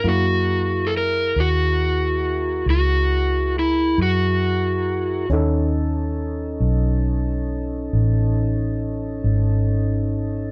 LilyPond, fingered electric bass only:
\new Staff \with { instrumentName = "Fingered electric bass" } { \clef bass \time 12/8 \key b \major \tempo 4. = 46 fis,4. dis,4. cis,4. fis,4. | dis,4. b,,4. a,,4. gis,,4. | }